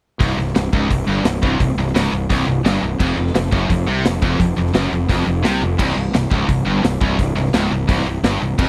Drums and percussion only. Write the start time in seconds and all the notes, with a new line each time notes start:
0.21 kick, open hi-hat
0.39 snare
0.47 snare
0.55 snare, open hi-hat
0.73 kick
0.91 kick, open hi-hat
1.25 snare, open hi-hat
1.43 kick
1.60 kick, open hi-hat
1.78 snare
1.87 snare
1.95 snare, open hi-hat
2.30 kick, open hi-hat
2.65 snare, open hi-hat
3.00 kick, crash
3.27 snare
3.35 snare, open hi-hat
3.52 kick
3.70 kick, open hi-hat
4.05 snare, open hi-hat
4.22 kick
4.40 kick, open hi-hat
4.67 snare
4.74 snare, open hi-hat
5.09 kick, open hi-hat
5.44 snare, open hi-hat
5.79 kick, crash
5.97 snare
6.14 snare, open hi-hat
6.31 kick
6.49 kick, open hi-hat
6.84 snare, open hi-hat
7.01 kick
7.19 kick, open hi-hat
7.37 snare
7.46 snare
7.53 snare, open hi-hat
7.89 kick, open hi-hat
8.24 snare, open hi-hat
8.59 kick, crash